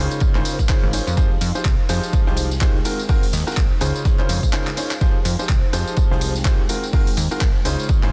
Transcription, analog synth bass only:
0.35 G#1
0.83 G#1
1.07 F2
1.41 F2
1.65 C2
1.89 F2
2.27 C2
3.33 D#2
3.57 A#1
3.81 C#2
4.29 F2
5.25 F2
5.49 C2
5.73 F2
6.11 C2
7.17 D#2
7.41 A#1
7.65 C#2
8.03 G#1

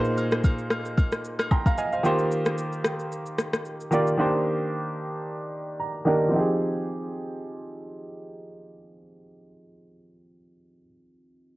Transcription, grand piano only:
Already playing: A#2 A#3 D#4 G#4
0.00 C5
1.51 G5 A#5 C6
1.66 F5 A#5
1.78 D#5 F5 G#5
1.93 C5 F5
2.03 D#3 A#3 F4 G4 C5
3.91 D#3 A#3 F4 G4 D5
4.18 D#3 A#3 D4 G4 C5
5.80 A#5
6.05 D#3 A#3 D4 G4 A#4 D#5
6.28 F3 C4
6.33 D#4 G4
6.39 G#4

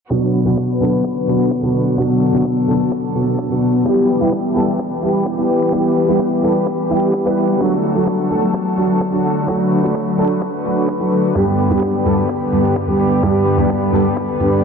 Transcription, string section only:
0.10 D3 F#3 B3 F#4 B4
1.98 A4
3.86 E3 G3 G4 B4
7.61 D3 F#3 A3 F#4 A4
9.48 B4
11.35 G3 B3 G4

